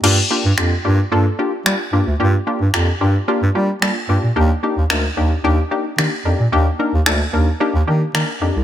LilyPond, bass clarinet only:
\new Staff \with { instrumentName = "Bass clarinet" } { \clef bass \time 4/4 \key g \minor \tempo 4 = 111 g,8 r16 g,16 f,8 g,8 g,8 r8 g16 r16 g,16 d,16 | g,8 r16 g,16 f,8 g,8 r16 g,16 g8 g16 r16 g,16 bes,16 | ees,8 r16 ees,16 d,8 ees,8 ees,8 r8 ees16 r16 f,16 bes,16 | ees,8 r16 ees,16 d,8 ees,8 r16 ees,16 ees8 ees16 r16 f,16 c,16 | }